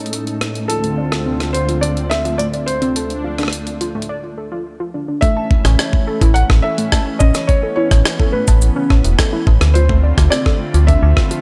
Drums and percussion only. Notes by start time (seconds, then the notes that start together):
0.06 closed hi-hat
0.13 closed hi-hat
0.27 closed hi-hat
0.41 cross-stick, closed hi-hat
0.55 closed hi-hat
0.70 closed hi-hat
0.84 closed hi-hat
1.12 cross-stick, closed hi-hat
1.40 cross-stick, closed hi-hat
1.55 closed hi-hat
1.69 closed hi-hat
1.83 closed hi-hat
1.97 closed hi-hat
2.11 cross-stick, closed hi-hat
2.25 closed hi-hat
2.39 closed hi-hat
2.54 closed hi-hat
2.68 closed hi-hat
2.82 closed hi-hat
2.96 closed hi-hat
3.10 closed hi-hat
3.38 cross-stick, closed hi-hat
3.43 cross-stick
3.48 cross-stick
3.53 closed hi-hat
3.67 closed hi-hat
3.81 closed hi-hat
4.02 closed hi-hat
5.22 kick, closed hi-hat
5.51 kick
5.65 cross-stick, closed hi-hat
5.79 cross-stick, closed hi-hat
5.93 kick
6.21 kick, closed hi-hat
6.36 closed hi-hat
6.50 kick, cross-stick
6.78 closed hi-hat
6.92 kick, cross-stick, closed hi-hat
7.21 kick, cabasa
7.35 cross-stick, closed hi-hat, cabasa
7.49 kick, closed hi-hat
7.91 kick, cross-stick, closed hi-hat
8.05 cross-stick, closed hi-hat
8.20 kick
8.48 kick, closed hi-hat, cabasa
8.62 closed hi-hat, cabasa
8.90 kick, cross-stick
9.04 closed hi-hat
9.19 kick, cross-stick, closed hi-hat
9.47 kick
9.61 cross-stick, closed hi-hat
9.75 closed hi-hat
9.89 kick
10.18 kick, cross-stick, closed hi-hat
10.32 cross-stick, closed hi-hat
10.46 kick, cross-stick
10.74 closed hi-hat
10.88 kick, closed hi-hat
11.17 kick, cross-stick
11.31 closed hi-hat